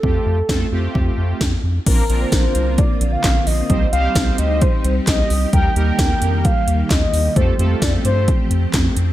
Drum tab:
CC |--------|x-------|--------|--------|
HH |--------|xxxxxxxo|xxxxxxxo|xxxxxxxo|
CP |--------|------x-|------x-|------x-|
SD |--o---o-|--o---o-|--o---o-|--o---o-|
BD |o-o-o-o-|o-o-o-o-|o-o-o-o-|o-o-o-o-|

CC |--------|
HH |xxxxxxxx|
CP |------x-|
SD |--o---o-|
BD |o-o-o-o-|